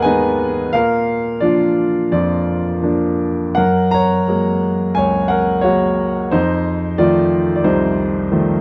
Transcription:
0.00 0.70 D#2 medium
0.00 0.70 G#2 medium
0.00 0.05 G#3 soft
0.00 0.05 B3 soft
0.00 0.06 D#4 medium
0.00 0.76 G#4 medium
0.00 0.75 A#4 medium
0.00 0.04 B4 medium
0.00 0.76 C#5 medium
0.00 0.76 D#5 medium
0.00 0.76 F#5 medium
0.00 0.02 G#5 medium
0.00 0.75 G#5 medium
0.00 0.76 A#5 loud
0.04 0.60 G#3 soft
0.04 0.60 B3 soft
0.04 0.61 D#4 soft
0.04 0.70 B4 medium
0.73 3.54 A#2 medium
0.73 1.39 A#4 medium
0.73 1.44 F5 medium
1.41 1.98 F3 soft
1.41 1.98 A#3 soft
1.41 1.99 D4 soft
1.41 2.09 F4 soft
1.41 2.10 D5 medium
2.12 3.53 F2 soft
2.12 3.18 F4 soft
2.12 3.18 D5 medium
2.83 3.42 F3 soft
2.83 3.42 A#3 soft
2.83 3.42 D4 soft
3.55 6.28 F#2 soft
3.55 3.90 A#4 medium
3.55 3.93 F#5 medium
3.91 4.94 C#5 medium
3.91 4.99 A#5 medium
4.28 4.83 F#3 soft
4.28 4.83 G#3 soft
4.28 4.84 A#3 soft
4.95 6.28 C#2 soft
4.95 5.29 C#5 medium
4.95 5.31 G#5 medium
5.28 5.62 A#4 medium
5.28 5.61 F#5 medium
5.61 6.19 F#3 soft
5.61 6.18 G#3 soft
5.61 6.28 F#4 medium
5.61 6.32 C#5 medium
5.65 6.19 A#3 soft
6.31 8.61 F2 medium
6.31 6.95 D#4 medium
6.31 7.00 C5 medium
6.98 7.51 D#3 soft
6.98 7.52 F3 soft
6.98 7.52 A3 soft
6.98 7.54 F4 medium
6.98 7.54 D5 medium
7.56 7.63 D5 soft
7.64 8.61 C2 medium
7.64 8.60 D#4 medium
7.64 8.60 C5 medium
8.32 8.61 D#3 soft
8.32 8.61 F3 soft
8.32 8.61 A3 soft

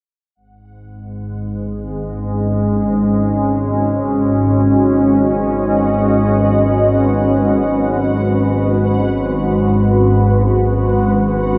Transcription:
0.35 11.58 G#1 medium
0.35 11.58 G#2 medium
0.35 9.42 G#3 medium
0.35 11.58 F#5 medium
1.27 11.28 C#4 medium
2.71 11.58 F#4 medium
3.68 9.40 D#5 medium
4.44 11.58 B4 medium
10.98 11.58 G4 medium

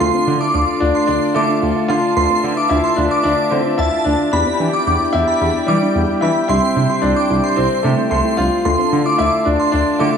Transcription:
0.00 0.11 D2 loud
0.00 2.13 A3 medium
0.00 2.13 D4 medium
0.00 0.11 D4 loud
0.00 0.84 F4 loud
0.00 4.29 F4 medium
0.00 2.13 F4 medium
0.00 2.13 A4 medium
0.00 2.14 D5 medium
0.00 4.29 A5 medium
0.00 0.22 C6 loud
0.14 0.24 C4 medium
0.27 0.38 D3 loud
0.27 0.38 D4 medium
0.41 0.51 E4 medium
0.41 0.52 D6 medium
0.54 0.65 D2 loud
0.54 0.75 D4 medium
0.54 0.65 D6 medium
0.80 0.92 D2 loud
0.80 1.06 D4 loud
0.80 1.02 F4 medium
0.95 1.17 C6 medium
1.07 1.19 D2 loud
1.07 1.36 D4 loud
1.07 1.29 F4 medium
1.34 1.46 D3 loud
1.34 1.91 A3 loud
1.34 1.46 E4 medium
1.34 1.47 D6 medium
1.49 1.60 D4 medium
1.63 1.73 D2 loud
1.63 1.73 F4 medium
1.76 1.87 F4 medium
1.88 2.00 D3 loud
1.88 2.10 D4 medium
1.88 2.73 F4 loud
1.88 2.01 C6 medium
2.17 2.27 D2 loud
2.17 4.29 A3 medium
2.17 4.29 D4 medium
2.17 2.27 D4 medium
2.17 4.29 F4 medium
2.17 4.29 B4 medium
2.17 4.31 E5 medium
2.17 2.39 C6 loud
2.30 2.41 C4 medium
2.44 2.54 D3 loud
2.44 2.54 D4 medium
2.57 2.68 E4 medium
2.57 2.68 D6 medium
2.69 2.81 D2 loud
2.69 2.91 D4 medium
2.69 2.98 E4 loud
2.84 2.95 C6 medium
2.96 3.08 D2 loud
2.96 3.22 D4 medium
2.96 3.18 F4 medium
3.11 3.49 D6 medium
3.23 3.35 D2 loud
3.23 3.52 D4 loud
3.23 3.46 F4 medium
3.51 3.62 D3 loud
3.51 3.79 C4 medium
3.51 3.62 E4 medium
3.66 3.76 D4 medium
3.78 3.89 D2 loud
3.78 4.03 E4 loud
3.78 3.89 F4 medium
3.78 4.17 A5 medium
3.93 4.03 F4 medium
4.05 4.16 D2 loud
4.05 4.30 D4 medium
4.05 4.27 D4 medium
4.32 4.43 E2 loud
4.32 6.45 B3 medium
4.32 4.83 D4 medium
4.32 6.45 D4 medium
4.32 4.43 D4 loud
4.32 6.45 E4 medium
4.32 8.62 E4 medium
4.32 6.45 G4 medium
4.32 6.47 D5 medium
4.32 8.62 G5 medium
4.32 4.55 B5 loud
4.47 4.57 C4 medium
4.60 4.70 E3 loud
4.60 4.70 D4 medium
4.74 4.84 E4 medium
4.74 4.85 D6 medium
4.87 4.97 E2 loud
4.87 5.08 D4 medium
4.87 4.98 D6 medium
5.13 5.24 E2 loud
5.13 5.69 E4 loud
5.13 5.35 G4 medium
5.28 5.50 B5 medium
5.41 5.51 E2 loud
5.41 5.62 G4 medium
5.67 5.78 E3 loud
5.67 6.23 G3 medium
5.67 5.79 E4 medium
5.67 5.79 D6 medium
5.82 5.92 D4 medium
5.95 6.05 E2 medium
5.95 6.06 E4 medium
6.09 6.19 E4 medium
6.21 6.32 E3 loud
6.21 6.43 D4 medium
6.21 6.47 E4 medium
6.21 6.33 B5 medium
6.48 6.59 C2 loud
6.48 8.62 G3 medium
6.48 8.62 C4 medium
6.48 6.60 D4 loud
6.48 6.99 E4 loud
6.48 8.62 E4 medium
6.48 8.62 G4 medium
6.48 8.63 C5 medium
6.48 6.71 C6 loud
6.63 6.73 C4 medium
6.76 6.86 C3 loud
6.76 6.87 D4 medium
6.90 7.00 E4 medium
6.90 7.01 C6 medium
7.02 7.13 C2 loud
7.02 7.24 C4 medium
7.02 7.58 D4 loud
7.16 7.28 D6 medium
7.30 7.41 C2 loud
7.30 7.51 E4 medium
7.44 7.82 C6 medium
7.56 7.68 C2 loud
7.56 7.85 C4 loud
7.56 7.78 E4 medium
7.83 7.95 C3 loud
7.83 8.08 A3 medium
7.83 7.95 D4 medium
7.98 8.08 C4 medium
8.10 8.22 C2 loud
8.10 8.36 A3 medium
8.10 8.22 E4 medium
8.10 8.49 C6 medium
8.25 8.35 E4 medium
8.37 8.49 C2 loud
8.37 8.59 D4 medium
8.37 9.21 F4 loud
8.65 8.76 D2 loud
8.65 10.18 A3 medium
8.65 10.18 D4 medium
8.65 8.76 D4 medium
8.65 10.18 F4 medium
8.65 10.18 A4 medium
8.65 10.18 D5 medium
8.65 10.18 A5 medium
8.65 8.87 C6 loud
8.79 8.89 C4 medium
8.92 9.03 D3 loud
8.92 9.03 D4 medium
9.06 9.16 E4 medium
9.06 9.17 D6 medium
9.18 9.30 D2 loud
9.18 9.40 D4 medium
9.18 9.47 E4 loud
9.18 9.30 D6 medium
9.45 9.57 D2 loud
9.45 9.71 D4 medium
9.45 9.67 F4 medium
9.60 9.82 C6 medium
9.72 9.84 D2 loud
9.72 10.01 D4 loud
9.72 9.94 F4 loud
9.99 10.11 D3 loud
9.99 10.18 A3 medium
9.99 10.11 E4 medium
9.99 10.11 D6 medium
10.14 10.18 D4 medium

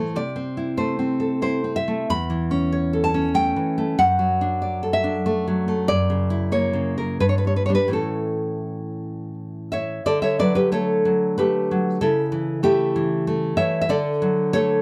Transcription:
0.00 0.14 A2 soft
0.00 0.18 E3 soft
0.00 0.18 A3 soft
0.00 0.17 E4 soft
0.00 0.15 C5 medium
0.16 2.05 C3 soft
0.16 0.77 D5 medium
0.36 0.98 C4 soft
0.57 1.41 E4 soft
0.77 1.75 A3 medium
0.77 1.39 C5 medium
0.99 1.63 C4 soft
1.20 2.09 A4 soft
1.42 2.10 E4 soft
1.42 1.75 C5 medium
1.64 2.10 C4 soft
1.76 2.09 E5 medium
1.88 2.10 A3 soft
2.10 3.56 E2 medium
2.10 3.02 B5 medium
2.30 3.25 E3 soft
2.51 3.13 C#4 medium
2.72 3.67 C#5 medium
2.93 3.88 A4 medium
3.04 3.34 A5 medium
3.14 3.98 C#4 medium
3.34 3.77 A3 soft
3.34 3.96 G5 medium
3.56 3.98 E3 soft
3.78 3.99 A3 soft
3.99 5.86 F#2 medium
3.99 4.90 F#5 medium
4.19 5.15 F#3 soft
4.41 5.03 D4 medium
4.62 4.93 D5 medium
4.83 5.79 A4 medium
4.93 5.25 E5 medium
5.04 5.89 D4 medium
5.26 5.67 A3 medium
5.48 5.90 F#3 soft
5.68 5.90 A3 medium
5.88 7.18 F#2 medium
5.88 6.51 D5 loud
6.10 6.72 C#3 soft
6.30 7.22 E4 medium
6.52 7.22 A#3 medium
6.52 6.97 C#5 medium
6.73 7.21 C#3 soft
6.98 7.20 A#4 medium
7.20 7.88 G2 medium
7.20 7.29 B4 medium
7.29 7.38 C#5 medium
7.38 7.47 B4 medium
7.45 7.68 G3 soft
7.45 7.56 C#5 medium
7.56 7.65 B4 medium
7.66 7.92 G3 soft
7.66 7.91 D4 soft
7.66 7.74 C#5 medium
7.75 7.93 B4 medium
7.88 9.99 A2 medium
7.88 10.00 E3 soft
7.88 10.00 C#4 soft
7.93 9.34 A4 medium
9.72 10.04 C#5 medium
9.72 10.04 E5 medium
10.06 11.98 D3 medium
10.06 10.22 A4 medium
10.06 10.22 D5 medium
10.22 10.38 C#5 medium
10.22 10.39 E5 medium
10.39 11.04 F#3 medium
10.39 10.54 B4 medium
10.39 10.56 D5 medium
10.55 10.71 G4 medium
10.55 10.72 B4 medium
10.72 11.37 A3 medium
10.72 11.34 A4 medium
10.72 11.35 C#5 medium
11.05 11.70 F#3 soft
11.38 12.03 A3 medium
11.38 11.99 G4 medium
11.38 12.00 B4 medium
11.71 12.01 F#3 medium
12.01 13.56 C#3 medium
12.01 12.61 E4 medium
12.01 12.62 A4 medium
12.32 12.94 E3 medium
12.63 13.26 A3 medium
12.63 13.55 E4 medium
12.63 13.55 G4 medium
12.96 13.56 E3 medium
13.27 13.89 A3 medium
13.57 13.90 E3 medium
13.57 13.82 C#5 medium
13.57 13.80 E5 medium
13.81 13.90 E5 medium
13.89 14.82 D3 medium
13.89 14.50 A4 medium
13.89 14.51 D5 medium
14.22 14.82 F#3 medium
14.53 14.82 A3 medium
14.53 14.82 A4 medium
14.53 14.82 C#5 loud

